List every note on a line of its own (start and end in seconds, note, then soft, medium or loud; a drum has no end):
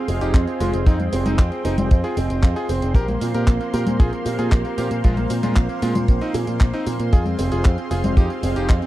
0.00 2.91 G#4 medium
0.00 8.87 C5 medium
0.00 0.84 F5 medium
0.00 8.87 C6 medium
0.08 0.19 F1 loud
0.08 0.18 C4 medium
0.08 0.57 C4 medium
0.08 0.57 F4 medium
0.08 0.57 G#4 medium
0.08 0.57 D#5 medium
0.08 open hi-hat loud
0.08 tambourine medium
0.21 0.32 F1 medium
0.21 0.31 D#4 medium
0.21 0.31 G4 medium
0.21 closed hi-hat medium
0.21 tambourine soft
0.34 0.45 F2 medium
0.34 0.44 C4 medium
0.34 kick loud
0.34 clap loud
0.34 closed hi-hat medium
0.34 tambourine soft
0.47 0.57 C4 medium
0.47 closed hi-hat soft
0.47 tambourine soft
0.60 0.71 F1 medium
0.60 0.70 G#3 medium
0.60 0.78 C4 medium
0.60 0.78 F4 medium
0.60 0.70 F4 medium
0.60 0.78 G#4 medium
0.60 0.78 C5 medium
0.60 open hi-hat loud
0.60 tambourine medium
0.73 0.84 F1 medium
0.73 0.83 C4 medium
0.73 closed hi-hat medium
0.73 tambourine soft
0.86 1.07 F2 loud
0.86 0.96 C4 medium
0.86 0.96 D#4 medium
0.86 2.93 G5 medium
0.86 kick loud
0.86 closed hi-hat medium
0.86 tambourine soft
1.00 1.09 C4 medium
1.00 closed hi-hat soft
1.00 tambourine soft
1.00 high conga medium
1.13 1.23 F1 medium
1.13 1.62 C4 medium
1.13 1.23 C4 medium
1.13 1.62 F4 medium
1.13 1.62 G#4 medium
1.13 1.62 C5 medium
1.13 open hi-hat loud
1.13 tambourine medium
1.26 1.36 F1 loud
1.26 1.36 C4 medium
1.26 1.36 D#4 medium
1.26 closed hi-hat medium
1.26 tambourine soft
1.26 high conga medium
1.39 1.49 F2 medium
1.39 1.49 C4 medium
1.39 kick loud
1.39 clap loud
1.39 closed hi-hat medium
1.39 tambourine soft
1.52 1.62 C4 medium
1.52 closed hi-hat soft
1.52 tambourine soft
1.65 1.75 F1 medium
1.65 2.14 C4 medium
1.65 1.75 C4 medium
1.65 1.75 D#4 medium
1.65 2.14 F4 medium
1.65 2.14 G#4 medium
1.65 2.14 C5 medium
1.65 open hi-hat loud
1.65 tambourine medium
1.78 1.88 F1 loud
1.78 1.88 C4 medium
1.78 closed hi-hat medium
1.78 tambourine soft
1.78 high conga medium
1.91 2.01 F2 loud
1.91 2.01 C4 medium
1.91 kick loud
1.91 closed hi-hat medium
1.91 tambourine soft
2.04 2.14 F4 medium
2.04 2.14 G#4 medium
2.04 closed hi-hat soft
2.04 tambourine soft
2.17 2.27 F1 loud
2.17 2.66 C4 medium
2.17 2.27 C4 medium
2.17 2.66 F4 medium
2.17 2.66 G#4 medium
2.17 2.66 D#5 medium
2.17 open hi-hat loud
2.17 tambourine medium
2.30 2.40 F1 medium
2.30 2.40 C4 medium
2.30 closed hi-hat medium
2.30 tambourine soft
2.43 2.53 F2 medium
2.43 2.53 C4 medium
2.43 kick loud
2.43 clap loud
2.43 closed hi-hat medium
2.43 tambourine soft
2.56 2.66 F4 medium
2.56 2.66 G#4 loud
2.56 closed hi-hat soft
2.56 tambourine soft
2.69 2.80 F1 medium
2.69 2.87 C4 medium
2.69 2.79 C4 medium
2.69 2.87 F4 medium
2.69 2.87 G#4 medium
2.69 2.87 C5 loud
2.69 open hi-hat loud
2.69 tambourine medium
2.82 2.93 F1 medium
2.82 2.92 C4 medium
2.82 closed hi-hat medium
2.82 tambourine soft
2.95 3.15 A#1 loud
2.95 3.05 G4 medium
2.95 7.09 A#4 medium
2.95 3.05 A#4 loud
2.95 7.09 F5 medium
2.95 kick loud
2.95 closed hi-hat soft
2.95 tambourine soft
3.08 3.18 A#3 medium
3.08 closed hi-hat soft
3.08 tambourine soft
3.08 high conga medium
3.21 3.32 A#2 medium
3.21 3.70 F3 medium
3.21 3.70 A#3 medium
3.21 3.31 A#3 medium
3.21 3.70 C4 medium
3.21 3.70 F4 loud
3.21 open hi-hat loud
3.21 tambourine medium
3.34 3.45 A#2 loud
3.34 3.44 G4 medium
3.34 3.44 A#4 medium
3.34 closed hi-hat medium
3.34 tambourine soft
3.47 3.58 A#1 medium
3.47 3.57 A#3 medium
3.47 kick loud
3.47 clap loud
3.47 closed hi-hat medium
3.47 tambourine soft
3.61 3.70 A#3 medium
3.61 closed hi-hat soft
3.61 tambourine soft
3.73 3.84 A#2 medium
3.73 4.23 F3 medium
3.73 4.23 A#3 medium
3.73 4.23 C4 medium
3.73 4.23 F4 medium
3.73 3.83 G4 medium
3.73 3.84 A#4 medium
3.73 open hi-hat loud
3.73 tambourine medium
3.87 3.97 A#2 loud
3.87 3.96 A#3 medium
3.87 closed hi-hat medium
3.87 tambourine soft
3.87 high conga medium
4.00 4.10 A#1 loud
4.00 4.09 F4 medium
4.00 4.10 G#4 loud
4.00 kick loud
4.00 closed hi-hat medium
4.00 tambourine soft
4.13 4.23 A#3 medium
4.13 closed hi-hat soft
4.13 tambourine soft
4.26 4.36 A#2 loud
4.26 4.75 F3 medium
4.26 4.36 A#3 medium
4.26 4.75 A#3 medium
4.26 4.75 C4 medium
4.26 4.75 G4 medium
4.26 open hi-hat loud
4.26 tambourine medium
4.39 4.49 A#2 medium
4.39 4.49 F4 medium
4.39 4.49 G#4 loud
4.39 closed hi-hat medium
4.39 tambourine soft
4.52 4.62 A#1 medium
4.52 4.62 A#3 medium
4.52 kick loud
4.52 clap loud
4.52 closed hi-hat medium
4.52 tambourine soft
4.65 4.75 A#3 medium
4.65 closed hi-hat soft
4.65 tambourine soft
4.78 4.88 A#2 medium
4.78 4.96 F3 medium
4.78 4.88 A#3 medium
4.78 4.96 A#3 medium
4.78 4.96 C4 medium
4.78 4.96 F4 loud
4.78 4.88 G4 medium
4.78 open hi-hat loud
4.78 tambourine medium
4.91 5.01 A#2 medium
4.91 5.01 A#3 medium
4.91 closed hi-hat medium
4.91 tambourine soft
5.04 5.25 A#1 loud
5.04 5.14 G#3 medium
5.04 5.14 F4 medium
5.04 kick loud
5.04 closed hi-hat soft
5.04 tambourine soft
5.17 5.27 A#3 medium
5.17 closed hi-hat soft
5.17 tambourine soft
5.17 high conga medium
5.30 5.40 A#2 medium
5.30 5.79 F3 medium
5.30 5.40 A#3 medium
5.30 5.79 A#3 medium
5.30 5.79 C4 medium
5.30 5.79 F4 medium
5.30 open hi-hat loud
5.30 tambourine medium
5.43 5.53 A#2 loud
5.43 5.53 G#3 medium
5.43 5.53 F4 medium
5.43 closed hi-hat soft
5.43 tambourine soft
5.43 high conga medium
5.56 5.67 A#1 medium
5.56 5.66 A#3 medium
5.56 kick loud
5.56 clap loud
5.56 closed hi-hat medium
5.56 tambourine soft
5.69 5.79 A#3 medium
5.69 closed hi-hat soft
5.69 tambourine soft
5.82 5.93 A#2 medium
5.82 6.31 F3 medium
5.82 5.92 G#3 medium
5.82 6.31 A#3 medium
5.82 6.31 C4 medium
5.82 5.92 F4 loud
5.82 6.31 F4 medium
5.82 open hi-hat loud
5.82 tambourine medium
5.95 6.06 A#2 loud
5.95 6.05 A#3 medium
5.95 closed hi-hat medium
5.95 tambourine soft
5.95 high conga medium
6.08 6.19 A#1 loud
6.08 6.18 A#3 medium
6.08 kick loud
6.08 closed hi-hat medium
6.08 tambourine soft
6.21 6.31 C4 medium
6.21 6.31 D#4 medium
6.21 closed hi-hat soft
6.21 tambourine soft
6.34 6.45 A#2 loud
6.34 6.46 F3 medium
6.34 6.46 A#3 medium
6.34 6.44 A#3 medium
6.34 6.46 C4 medium
6.34 6.46 G#4 loud
6.34 open hi-hat loud
6.34 tambourine medium
6.47 6.58 A#2 medium
6.47 6.65 F3 medium
6.47 6.65 A#3 medium
6.47 6.57 A#3 medium
6.47 6.65 C4 medium
6.47 6.65 F4 medium
6.47 closed hi-hat medium
6.47 tambourine soft
6.60 6.71 A#1 medium
6.60 6.70 A#3 medium
6.60 kick loud
6.60 clap loud
6.60 closed hi-hat medium
6.60 tambourine soft
6.73 6.83 C4 medium
6.73 6.83 D#4 medium
6.73 closed hi-hat soft
6.73 tambourine soft
6.87 6.97 A#2 medium
6.87 7.11 F3 medium
6.87 7.11 A#3 medium
6.87 6.97 A#3 medium
6.87 7.11 C4 medium
6.87 7.11 F4 medium
6.87 open hi-hat loud
6.87 tambourine medium
7.00 7.10 A#2 medium
7.00 7.10 A#3 medium
7.00 closed hi-hat medium
7.00 tambourine soft
7.13 7.33 F2 loud
7.13 7.23 F4 medium
7.13 7.23 G#4 loud
7.13 8.87 G#4 medium
7.13 8.87 F5 medium
7.13 kick loud
7.13 closed hi-hat medium
7.13 tambourine soft
7.26 7.36 C4 medium
7.26 closed hi-hat soft
7.26 tambourine soft
7.26 high conga medium
7.39 7.49 F1 medium
7.39 7.88 C4 medium
7.39 7.49 C4 medium
7.39 7.88 F4 medium
7.39 7.88 G#4 medium
7.39 7.88 C5 loud
7.39 open hi-hat loud
7.39 tambourine medium
7.52 7.62 F1 loud
7.52 7.62 F4 medium
7.52 7.62 G#4 medium
7.52 closed hi-hat soft
7.52 tambourine soft
7.65 7.75 F2 medium
7.65 7.75 C4 medium
7.65 kick loud
7.65 clap loud
7.65 closed hi-hat medium
7.65 tambourine soft
7.78 7.88 C4 medium
7.78 closed hi-hat soft
7.78 tambourine soft
7.91 8.01 F1 medium
7.91 8.40 C4 medium
7.91 8.01 F4 medium
7.91 8.40 F4 medium
7.91 8.01 G#4 medium
7.91 8.40 G#4 medium
7.91 8.40 C5 medium
7.91 open hi-hat loud
7.91 tambourine medium
8.04 8.14 F1 loud
8.04 8.14 C4 medium
8.04 closed hi-hat medium
8.04 tambourine soft
8.04 high conga medium
8.17 8.27 F2 medium
8.17 8.27 D#4 medium
8.17 8.27 G4 medium
8.17 kick loud
8.17 closed hi-hat medium
8.17 tambourine soft
8.30 8.40 C4 medium
8.30 closed hi-hat soft
8.30 tambourine soft
8.43 8.53 F1 loud
8.43 8.87 C4 medium
8.43 8.53 C4 medium
8.43 8.87 F4 medium
8.43 8.87 G#4 medium
8.43 8.87 D#5 medium
8.43 open hi-hat loud
8.43 tambourine medium
8.56 8.66 F1 medium
8.56 8.66 D#4 medium
8.56 8.66 G4 medium
8.56 closed hi-hat medium
8.56 tambourine soft
8.69 8.80 F2 medium
8.69 8.79 C4 medium
8.69 kick loud
8.69 clap loud
8.69 closed hi-hat medium
8.69 tambourine soft
8.82 8.87 C4 medium
8.82 closed hi-hat soft
8.82 tambourine soft